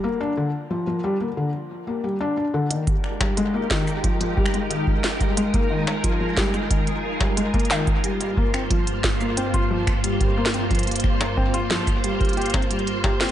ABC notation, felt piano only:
X:1
M:4/4
L:1/16
Q:1/4=90
K:Fm
V:1 name="Felt piano" clef=bass
B, =D =D, z F, F, G, B, D, z2 B, G, D D D, | E, z2 G, A, B, E, z F, F, G, A, E, z2 G, | A, B, E, z F, F, G, A, E, z2 G, A, B, E, z | G, G, B, C F, z2 B, C F F, z G, G, B, C |
F, z2 B, C F F, z G, G, G C G, z G C |]